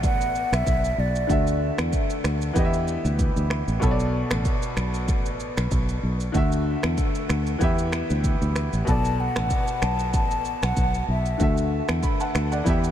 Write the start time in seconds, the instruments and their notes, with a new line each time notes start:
Already playing: grand piano B2 B3 A4 D5
0.03 fingered electric bass A1, flute F#5, kick, shaker
0.21 shaker
0.35 shaker
0.52 fingered electric bass B1, flute E5, finger snap, cross-stick, shaker
0.67 fingered electric bass B1, kick, shaker
0.84 shaker
0.98 fingered electric bass B1, flute D5
1.15 shaker
1.27 fingered electric bass D2, grand piano D3 A3 F#4, kick, shaker
1.32 grand piano E5
1.47 shaker
1.78 fingered electric bass E2, finger snap, cross-stick, shaker
1.93 kick, shaker
2.10 shaker
2.24 fingered electric bass D2, finger snap, cross-stick, shaker
2.42 shaker
2.53 fingered electric bass E2, grand piano E3 B3 G4, kick, shaker
2.58 grand piano D#5
2.65 grand piano E5
2.74 shaker
2.88 shaker
3.05 fingered electric bass D2, shaker
3.19 kick, shaker
3.36 fingered electric bass D2, shaker
3.50 finger snap, cross-stick
3.68 fingered electric bass A1, shaker
3.80 fingered electric bass B1, grand piano B2 B3 A4, kick, shaker
3.85 grand piano C#5
3.91 grand piano D5
4.00 shaker
4.31 fingered electric bass A1, finger snap, cross-stick, shaker
4.45 kick, shaker
4.62 shaker
4.77 fingered electric bass B1, finger snap, cross-stick, shaker
4.94 shaker
5.08 fingered electric bass A1, kick, shaker
5.26 shaker
5.40 shaker
5.57 fingered electric bass B1, finger snap, cross-stick, shaker
5.71 fingered electric bass B1, kick, shaker
5.89 shaker
6.03 fingered electric bass B1
6.20 shaker
6.32 fingered electric bass D2, grand piano D3 A3 F#4, kick, shaker
6.37 grand piano E5
6.52 shaker
6.83 fingered electric bass E2, finger snap, cross-stick, shaker
6.98 kick, shaker
7.15 shaker
7.29 fingered electric bass D2, finger snap, cross-stick, shaker
7.47 shaker
7.58 fingered electric bass E2, grand piano E3 B3 G4, kick, shaker
7.63 grand piano E5
7.78 shaker
7.92 finger snap, cross-stick, shaker
8.10 fingered electric bass D2, shaker
8.24 kick, shaker
8.41 fingered electric bass D2, shaker
8.56 finger snap, cross-stick, shaker
8.73 fingered electric bass A1, shaker
8.85 fingered electric bass B1, grand piano B2 B3 A4, flute A5, kick, shaker
8.90 grand piano D5
9.05 shaker
9.20 flute F#5
9.36 fingered electric bass A1, finger snap, cross-stick, shaker
9.50 kick, shaker
9.68 shaker
9.82 fingered electric bass B1, flute A5, finger snap, cross-stick, shaker
9.99 shaker
10.14 fingered electric bass A1, flute A5, kick, shaker
10.31 shaker
10.45 shaker
10.62 fingered electric bass B1, flute F#5, finger snap, cross-stick, shaker
10.77 fingered electric bass B1, kick, shaker
10.94 shaker
11.08 fingered electric bass B1, flute E5
11.26 shaker
11.38 fingered electric bass D2, grand piano D3 A3 F#4, kick, shaker
11.42 grand piano E5
11.57 shaker
11.88 fingered electric bass E2, finger snap, cross-stick, shaker
12.03 grand piano B5, kick, shaker
12.20 grand piano F#5 A5, shaker
12.35 fingered electric bass D2, finger snap, cross-stick, shaker
12.52 grand piano D5 F#5, shaker
12.64 fingered electric bass E2, grand piano E3 B3 G4, kick, shaker
12.69 grand piano E5
12.84 shaker